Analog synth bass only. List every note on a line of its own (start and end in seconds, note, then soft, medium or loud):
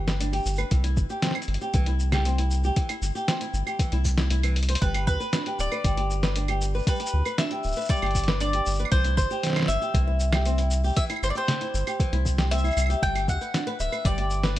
0.00 0.40 G1 medium
0.46 0.64 G1 medium
0.71 0.99 C2 medium
0.97 1.07 G1 medium
1.48 1.58 G1 loud
1.74 2.71 C2 loud
3.02 3.12 G1 medium
3.54 3.63 G1 loud
3.92 4.30 C2 medium
4.31 4.76 C2 loud
4.82 5.09 G1 medium
5.07 5.17 D2 medium
5.59 5.68 D1 loud
5.84 6.81 G1 loud
7.14 7.23 D2 medium
7.65 7.74 D1 loud
8.03 8.61 G1 medium
8.67 8.85 G1 loud
8.92 9.19 C2 loud
9.18 9.27 G1 medium
9.69 9.78 G1 loud
9.94 10.91 C2 loud
11.23 11.32 G1 medium
11.74 11.84 G1 loud
12.13 12.71 C2 medium
12.77 12.95 C2 loud
13.03 13.30 G1 medium
13.28 13.37 D2 medium
13.80 13.89 D1 loud
14.05 14.59 G1 loud